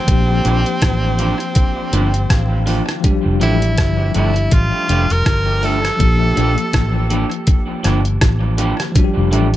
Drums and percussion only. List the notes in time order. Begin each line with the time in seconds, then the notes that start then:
0.08 kick, closed hi-hat
0.45 closed hi-hat
0.66 closed hi-hat
0.82 kick, cross-stick, closed hi-hat
1.19 closed hi-hat
1.40 closed hi-hat
1.55 kick, closed hi-hat
1.93 closed hi-hat
2.14 closed hi-hat
2.30 kick, cross-stick, closed hi-hat
2.67 open hi-hat
2.89 cross-stick, closed hi-hat
3.04 kick, closed hi-hat
3.41 closed hi-hat
3.62 closed hi-hat
3.78 kick, cross-stick, closed hi-hat
4.14 closed hi-hat
4.36 closed hi-hat
4.51 kick, closed hi-hat
4.89 closed hi-hat
5.10 closed hi-hat
5.26 kick, cross-stick, closed hi-hat
5.63 open hi-hat
5.85 cross-stick, closed hi-hat
6.00 kick, closed hi-hat
6.37 closed hi-hat
6.58 closed hi-hat
6.73 kick, cross-stick, closed hi-hat
7.10 closed hi-hat
7.31 closed hi-hat
7.47 kick, closed hi-hat
7.84 cross-stick, closed hi-hat
8.05 closed hi-hat
8.21 kick, cross-stick, closed hi-hat
8.58 closed hi-hat
8.80 cross-stick, closed hi-hat
8.96 kick, closed hi-hat
9.33 closed hi-hat